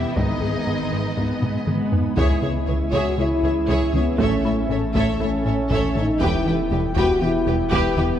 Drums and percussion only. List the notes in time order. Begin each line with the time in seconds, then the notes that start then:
0.16 taiko
1.17 taiko
1.42 taiko low-mid
1.67 taiko mid
1.92 taiko low
2.17 taiko
2.93 taiko
3.68 taiko
3.94 taiko mid
4.19 taiko
4.95 taiko
5.71 taiko
5.95 taiko mid
6.21 taiko
6.96 taiko
7.72 taiko
7.97 taiko mid